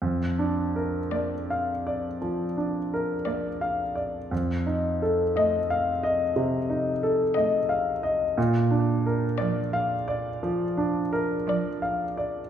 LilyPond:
<<
  \new Staff \with { instrumentName = "Violin" } { \time 4/4 \key bes \major \tempo 4 = 58 r4 d''4 r4 d''4 | r4 ees''4 r4 ees''4 | r4 d''4 r4 d''4 | }
  \new Staff \with { instrumentName = "Grand piano" } { \time 4/4 \key bes \major \tuplet 3/2 { f,8 d'8 bes'8 d''8 f''8 d''8 f8 d'8 bes'8 d''8 f''8 d''8 } | \tuplet 3/2 { f,8 ees'8 a'8 ees''8 f''8 ees''8 c8 ees'8 a'8 ees''8 f''8 ees''8 } | \tuplet 3/2 { bes,8 d'8 bes'8 d''8 f''8 d''8 f8 d'8 bes'8 d''8 f''8 d''8 } | }
  \new Staff \with { instrumentName = "Cello" } { \time 4/4 \key bes \major r4 bes4 r4 bes4 | r4 a4 r4 a4 | r4 f4 r4 f4 | }
>>